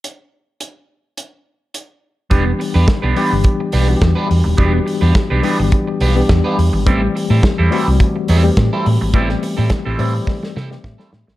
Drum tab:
HH |x---x---x---x---|x-o-x-o-x-o-x-o-|x-o-x-o-x-o-x-o-|x-o-x-o-x-o-x-o-|
SD |----------------|----o-------o---|----o-------o---|----o-------o---|
BD |----------------|o---o---o---o---|o---o---o---o---|o---o---o---o---|

HH |x-o-x-o---------|
SD |-o--o---oooooooo|
BD |o---o---o---o---|